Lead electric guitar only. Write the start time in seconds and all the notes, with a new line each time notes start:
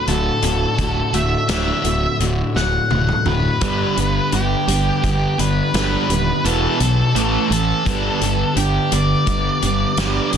0.09 A4
1.14 E5
1.50 E5
2.56 F#5
3.28 B4
4.34 G4
5.40 B4
6.46 A4
7.52 A4
8.57 G4
8.93 D5